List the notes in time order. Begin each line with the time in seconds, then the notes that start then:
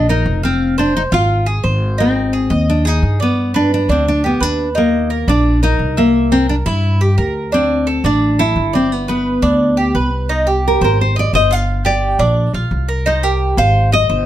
Already playing: A#1
0.09 D#4 A#4
0.26 F1
0.43 C4 F5
0.78 D4 C5
0.97 D#4
1.12 G#1 F4
1.46 G#4
1.64 G#1 C5
1.98 C4 D#4
2.33 G#4
2.50 D#2 D#5
2.70 D4
2.85 D#4 G#4
3.03 G2
3.20 B3 D5
3.54 D4 B4
3.74 D4
3.89 D2 C4 D4
4.08 D4
4.24 B3 G4
4.40 D#2 D4 B4
4.75 A#3 D#4
5.10 A#4
5.28 A#1 D4 D5
5.63 D#4 A#4
5.79 C2
5.97 A#3 E5
6.32 C4 A#4
6.49 D4
6.66 G2 E4
7.01 G4
7.18 D2 A#4
7.52 C4 D4
7.87 A4
8.04 A1 D4 D5
8.39 E4 A4
8.56 G1
8.73 C4 D5
8.92 B3
9.08 B3 B4
9.42 D2 D4
9.77 G4
9.95 C2 B4
10.29 D#4
10.47 G4
10.68 A#4
10.81 G#1 A#4 C5
11.01 C5
11.16 D5 D#5
11.33 G1 C5 D#5
11.51 F4 F5
11.85 G4 D5
12.19 A#1 D4
12.53 A#1 F4
12.71 C2
12.88 A#4
13.06 D#4 C5
13.23 G4 A#4
13.57 G#1 C5 F5
13.92 D#5
14.09 G1 C5